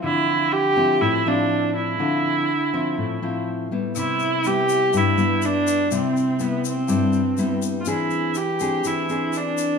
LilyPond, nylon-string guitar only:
\new Staff \with { instrumentName = "Nylon-string guitar" } { \time 4/4 \key c \major \tempo 4 = 122 << { <f c' e'>4. <f c' e'>4 <f c' e'>4. | <f c' e'>4 r8 <f c' e'>4 <f c' e'>4 <g b e'>8~ | <g b e'>4 <g b e'>4. <g b e'>4. | <g e'>4 <g b e'>8 r8 <g e'>8 r8 <g b e'>4 |
<bis d' gis'>4 r8 <bis d' gis'>4 <bis d' gis'>4. | } \\ { d2 a,2 | d2 a,2 | c2 g,2 | c2 g,2 |
e2 e2 | } >> }